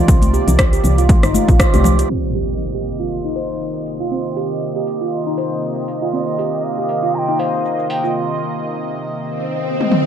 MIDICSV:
0, 0, Header, 1, 8, 480
1, 0, Start_track
1, 0, Key_signature, -3, "minor"
1, 0, Tempo, 504202
1, 79, Time_signature, 4, 2, 24, 8
1, 9578, End_track
2, 0, Start_track
2, 0, Title_t, "Bansuri"
2, 0, Program_c, 0, 73
2, 5846, Note_on_c, 0, 75, 90
2, 6325, Note_on_c, 0, 77, 87
2, 6340, Note_off_c, 0, 75, 0
2, 6805, Note_on_c, 0, 82, 88
2, 6820, Note_off_c, 0, 77, 0
2, 6838, Note_on_c, 0, 79, 96
2, 6848, Note_off_c, 0, 82, 0
2, 7041, Note_on_c, 0, 77, 95
2, 7055, Note_off_c, 0, 79, 0
2, 7520, Note_on_c, 0, 79, 97
2, 7535, Note_off_c, 0, 77, 0
2, 7760, Note_off_c, 0, 79, 0
2, 9578, End_track
3, 0, Start_track
3, 0, Title_t, "Handpan"
3, 0, Program_c, 1, 114
3, 80, Note_on_c, 1, 60, 83
3, 152, Note_off_c, 1, 60, 0
3, 320, Note_on_c, 1, 67, 75
3, 441, Note_off_c, 1, 67, 0
3, 696, Note_on_c, 1, 67, 75
3, 752, Note_off_c, 1, 67, 0
3, 934, Note_on_c, 1, 65, 77
3, 1029, Note_off_c, 1, 65, 0
3, 1173, Note_on_c, 1, 63, 80
3, 1268, Note_off_c, 1, 63, 0
3, 1278, Note_on_c, 1, 65, 77
3, 1402, Note_off_c, 1, 65, 0
3, 1413, Note_on_c, 1, 65, 77
3, 1514, Note_off_c, 1, 65, 0
3, 1653, Note_on_c, 1, 67, 100
3, 1748, Note_off_c, 1, 67, 0
3, 1893, Note_on_c, 1, 67, 76
3, 1993, Note_off_c, 1, 67, 0
3, 1999, Note_on_c, 1, 60, 77
3, 2072, Note_off_c, 1, 60, 0
3, 2238, Note_on_c, 1, 67, 73
3, 2360, Note_off_c, 1, 67, 0
3, 2612, Note_on_c, 1, 67, 72
3, 2670, Note_off_c, 1, 67, 0
3, 2854, Note_on_c, 1, 65, 73
3, 2949, Note_off_c, 1, 65, 0
3, 3092, Note_on_c, 1, 63, 72
3, 3188, Note_off_c, 1, 63, 0
3, 3197, Note_on_c, 1, 72, 71
3, 3271, Note_off_c, 1, 72, 0
3, 3811, Note_on_c, 1, 65, 72
3, 3907, Note_off_c, 1, 65, 0
3, 3918, Note_on_c, 1, 60, 80
3, 3992, Note_off_c, 1, 60, 0
3, 4157, Note_on_c, 1, 67, 73
3, 4279, Note_off_c, 1, 67, 0
3, 4532, Note_on_c, 1, 67, 71
3, 4590, Note_off_c, 1, 67, 0
3, 4772, Note_on_c, 1, 65, 73
3, 4868, Note_off_c, 1, 65, 0
3, 5013, Note_on_c, 1, 63, 75
3, 5108, Note_off_c, 1, 63, 0
3, 5119, Note_on_c, 1, 72, 74
3, 5192, Note_off_c, 1, 72, 0
3, 5734, Note_on_c, 1, 65, 74
3, 5829, Note_off_c, 1, 65, 0
3, 5840, Note_on_c, 1, 60, 79
3, 5913, Note_off_c, 1, 60, 0
3, 6079, Note_on_c, 1, 67, 72
3, 6201, Note_off_c, 1, 67, 0
3, 6454, Note_on_c, 1, 67, 75
3, 6511, Note_off_c, 1, 67, 0
3, 6692, Note_on_c, 1, 65, 74
3, 6788, Note_off_c, 1, 65, 0
3, 6935, Note_on_c, 1, 63, 74
3, 7029, Note_off_c, 1, 63, 0
3, 7040, Note_on_c, 1, 72, 73
3, 7112, Note_off_c, 1, 72, 0
3, 7654, Note_on_c, 1, 65, 76
3, 7749, Note_off_c, 1, 65, 0
3, 9578, End_track
4, 0, Start_track
4, 0, Title_t, "Analog synth pad"
4, 0, Program_c, 2, 89
4, 0, Note_on_c, 2, 48, 75
4, 0, Note_on_c, 2, 51, 67
4, 0, Note_on_c, 2, 58, 69
4, 0, Note_on_c, 2, 74, 82
4, 1960, Note_off_c, 2, 48, 0
4, 1960, Note_off_c, 2, 51, 0
4, 1960, Note_off_c, 2, 58, 0
4, 1960, Note_off_c, 2, 74, 0
4, 1998, Note_on_c, 2, 51, 69
4, 1998, Note_on_c, 2, 58, 68
4, 1998, Note_on_c, 2, 75, 82
4, 1999, Note_on_c, 2, 48, 77
4, 9578, Note_off_c, 2, 48, 0
4, 9578, Note_off_c, 2, 51, 0
4, 9578, Note_off_c, 2, 58, 0
4, 9578, Note_off_c, 2, 75, 0
4, 9578, End_track
5, 0, Start_track
5, 0, Title_t, "FM bass"
5, 0, Program_c, 3, 39
5, 79, Note_on_c, 3, 36, 99
5, 379, Note_off_c, 3, 36, 0
5, 454, Note_on_c, 3, 36, 84
5, 741, Note_off_c, 3, 36, 0
5, 801, Note_on_c, 3, 36, 96
5, 1100, Note_off_c, 3, 36, 0
5, 1175, Note_on_c, 3, 31, 88
5, 1321, Note_off_c, 3, 31, 0
5, 1414, Note_on_c, 3, 34, 97
5, 1561, Note_off_c, 3, 34, 0
5, 1655, Note_on_c, 3, 36, 103
5, 1942, Note_off_c, 3, 36, 0
5, 9578, End_track
6, 0, Start_track
6, 0, Title_t, "Impact"
6, 0, Program_c, 4, 103
6, 1999, Note_on_c, 4, 60, 70
6, 3919, Note_off_c, 4, 60, 0
6, 9578, End_track
7, 0, Start_track
7, 0, Title_t, "Swell"
7, 0, Program_c, 5, 103
7, 8719, Note_on_c, 5, 60, 75
7, 9578, Note_off_c, 5, 60, 0
7, 9578, End_track
8, 0, Start_track
8, 0, Title_t, "Drums"
8, 79, Note_on_c, 9, 36, 118
8, 80, Note_on_c, 9, 42, 72
8, 85, Note_on_c, 9, 82, 93
8, 174, Note_off_c, 9, 36, 0
8, 175, Note_off_c, 9, 42, 0
8, 181, Note_off_c, 9, 82, 0
8, 207, Note_on_c, 9, 63, 93
8, 214, Note_on_c, 9, 42, 49
8, 220, Note_on_c, 9, 82, 51
8, 303, Note_off_c, 9, 63, 0
8, 309, Note_off_c, 9, 42, 0
8, 315, Note_off_c, 9, 82, 0
8, 325, Note_on_c, 9, 82, 52
8, 420, Note_off_c, 9, 82, 0
8, 452, Note_on_c, 9, 64, 83
8, 454, Note_on_c, 9, 42, 33
8, 460, Note_on_c, 9, 82, 95
8, 547, Note_off_c, 9, 64, 0
8, 550, Note_off_c, 9, 42, 0
8, 555, Note_off_c, 9, 82, 0
8, 559, Note_on_c, 9, 36, 108
8, 559, Note_on_c, 9, 37, 109
8, 559, Note_on_c, 9, 42, 72
8, 564, Note_on_c, 9, 82, 51
8, 654, Note_off_c, 9, 36, 0
8, 654, Note_off_c, 9, 37, 0
8, 654, Note_off_c, 9, 42, 0
8, 660, Note_off_c, 9, 82, 0
8, 695, Note_on_c, 9, 42, 33
8, 700, Note_on_c, 9, 82, 54
8, 790, Note_off_c, 9, 42, 0
8, 795, Note_off_c, 9, 82, 0
8, 797, Note_on_c, 9, 64, 82
8, 805, Note_on_c, 9, 82, 90
8, 892, Note_off_c, 9, 64, 0
8, 900, Note_off_c, 9, 82, 0
8, 936, Note_on_c, 9, 42, 32
8, 941, Note_on_c, 9, 82, 51
8, 1031, Note_off_c, 9, 42, 0
8, 1036, Note_off_c, 9, 82, 0
8, 1039, Note_on_c, 9, 36, 118
8, 1040, Note_on_c, 9, 42, 70
8, 1042, Note_on_c, 9, 63, 62
8, 1046, Note_on_c, 9, 82, 53
8, 1134, Note_off_c, 9, 36, 0
8, 1136, Note_off_c, 9, 42, 0
8, 1138, Note_off_c, 9, 63, 0
8, 1141, Note_off_c, 9, 82, 0
8, 1174, Note_on_c, 9, 37, 60
8, 1174, Note_on_c, 9, 42, 32
8, 1179, Note_on_c, 9, 82, 52
8, 1269, Note_off_c, 9, 37, 0
8, 1269, Note_off_c, 9, 42, 0
8, 1274, Note_off_c, 9, 82, 0
8, 1279, Note_on_c, 9, 63, 85
8, 1284, Note_on_c, 9, 82, 94
8, 1374, Note_off_c, 9, 63, 0
8, 1379, Note_off_c, 9, 82, 0
8, 1414, Note_on_c, 9, 36, 79
8, 1414, Note_on_c, 9, 42, 32
8, 1419, Note_on_c, 9, 82, 52
8, 1509, Note_off_c, 9, 36, 0
8, 1509, Note_off_c, 9, 42, 0
8, 1514, Note_off_c, 9, 82, 0
8, 1519, Note_on_c, 9, 36, 115
8, 1520, Note_on_c, 9, 37, 108
8, 1520, Note_on_c, 9, 42, 66
8, 1525, Note_on_c, 9, 82, 91
8, 1614, Note_off_c, 9, 36, 0
8, 1615, Note_off_c, 9, 37, 0
8, 1615, Note_off_c, 9, 42, 0
8, 1620, Note_off_c, 9, 82, 0
8, 1653, Note_on_c, 9, 63, 88
8, 1654, Note_on_c, 9, 42, 33
8, 1659, Note_on_c, 9, 82, 52
8, 1748, Note_off_c, 9, 63, 0
8, 1749, Note_off_c, 9, 42, 0
8, 1752, Note_on_c, 9, 64, 107
8, 1754, Note_off_c, 9, 82, 0
8, 1755, Note_on_c, 9, 63, 105
8, 1765, Note_on_c, 9, 82, 89
8, 1847, Note_off_c, 9, 64, 0
8, 1851, Note_off_c, 9, 63, 0
8, 1860, Note_off_c, 9, 82, 0
8, 1894, Note_on_c, 9, 42, 47
8, 1899, Note_on_c, 9, 82, 51
8, 1989, Note_off_c, 9, 42, 0
8, 1995, Note_off_c, 9, 82, 0
8, 2239, Note_on_c, 9, 46, 91
8, 2334, Note_off_c, 9, 46, 0
8, 2717, Note_on_c, 9, 46, 91
8, 2812, Note_off_c, 9, 46, 0
8, 3197, Note_on_c, 9, 46, 91
8, 3292, Note_off_c, 9, 46, 0
8, 3445, Note_on_c, 9, 82, 86
8, 3540, Note_off_c, 9, 82, 0
8, 3677, Note_on_c, 9, 46, 90
8, 3683, Note_on_c, 9, 82, 85
8, 3773, Note_off_c, 9, 46, 0
8, 3778, Note_off_c, 9, 82, 0
8, 3820, Note_on_c, 9, 82, 49
8, 3915, Note_off_c, 9, 82, 0
8, 3924, Note_on_c, 9, 82, 92
8, 4019, Note_off_c, 9, 82, 0
8, 4058, Note_on_c, 9, 82, 52
8, 4153, Note_off_c, 9, 82, 0
8, 4159, Note_on_c, 9, 46, 88
8, 4254, Note_off_c, 9, 46, 0
8, 4298, Note_on_c, 9, 82, 93
8, 4394, Note_off_c, 9, 82, 0
8, 4404, Note_on_c, 9, 82, 51
8, 4499, Note_off_c, 9, 82, 0
8, 4538, Note_on_c, 9, 82, 53
8, 4633, Note_off_c, 9, 82, 0
8, 4639, Note_on_c, 9, 46, 86
8, 4644, Note_on_c, 9, 82, 94
8, 4734, Note_off_c, 9, 46, 0
8, 4739, Note_off_c, 9, 82, 0
8, 4779, Note_on_c, 9, 82, 52
8, 4874, Note_off_c, 9, 82, 0
8, 4884, Note_on_c, 9, 82, 54
8, 4979, Note_off_c, 9, 82, 0
8, 5018, Note_on_c, 9, 82, 53
8, 5114, Note_off_c, 9, 82, 0
8, 5119, Note_on_c, 9, 46, 89
8, 5124, Note_on_c, 9, 82, 94
8, 5214, Note_off_c, 9, 46, 0
8, 5219, Note_off_c, 9, 82, 0
8, 5260, Note_on_c, 9, 82, 51
8, 5355, Note_off_c, 9, 82, 0
8, 5364, Note_on_c, 9, 82, 92
8, 5459, Note_off_c, 9, 82, 0
8, 5500, Note_on_c, 9, 82, 51
8, 5595, Note_off_c, 9, 82, 0
8, 5599, Note_on_c, 9, 46, 90
8, 5604, Note_on_c, 9, 82, 94
8, 5694, Note_off_c, 9, 46, 0
8, 5699, Note_off_c, 9, 82, 0
8, 5740, Note_on_c, 9, 82, 52
8, 5835, Note_off_c, 9, 82, 0
8, 5844, Note_on_c, 9, 82, 90
8, 5939, Note_off_c, 9, 82, 0
8, 5979, Note_on_c, 9, 82, 52
8, 6074, Note_off_c, 9, 82, 0
8, 6080, Note_on_c, 9, 46, 84
8, 6086, Note_on_c, 9, 82, 51
8, 6175, Note_off_c, 9, 46, 0
8, 6181, Note_off_c, 9, 82, 0
8, 6220, Note_on_c, 9, 82, 93
8, 6315, Note_off_c, 9, 82, 0
8, 6324, Note_on_c, 9, 82, 52
8, 6419, Note_off_c, 9, 82, 0
8, 6458, Note_on_c, 9, 82, 54
8, 6553, Note_off_c, 9, 82, 0
8, 6558, Note_on_c, 9, 46, 83
8, 6563, Note_on_c, 9, 82, 92
8, 6653, Note_off_c, 9, 46, 0
8, 6659, Note_off_c, 9, 82, 0
8, 6698, Note_on_c, 9, 82, 51
8, 6793, Note_off_c, 9, 82, 0
8, 6804, Note_on_c, 9, 82, 55
8, 6899, Note_off_c, 9, 82, 0
8, 6940, Note_on_c, 9, 82, 51
8, 7035, Note_off_c, 9, 82, 0
8, 7039, Note_on_c, 9, 46, 88
8, 7045, Note_on_c, 9, 82, 93
8, 7134, Note_off_c, 9, 46, 0
8, 7140, Note_off_c, 9, 82, 0
8, 7179, Note_on_c, 9, 82, 52
8, 7275, Note_off_c, 9, 82, 0
8, 7285, Note_on_c, 9, 82, 90
8, 7380, Note_off_c, 9, 82, 0
8, 7420, Note_on_c, 9, 82, 53
8, 7515, Note_off_c, 9, 82, 0
8, 7520, Note_on_c, 9, 46, 85
8, 7525, Note_on_c, 9, 82, 95
8, 7615, Note_off_c, 9, 46, 0
8, 7620, Note_off_c, 9, 82, 0
8, 7660, Note_on_c, 9, 82, 51
8, 7755, Note_off_c, 9, 82, 0
8, 9335, Note_on_c, 9, 48, 51
8, 9430, Note_off_c, 9, 48, 0
8, 9440, Note_on_c, 9, 47, 78
8, 9535, Note_off_c, 9, 47, 0
8, 9578, End_track
0, 0, End_of_file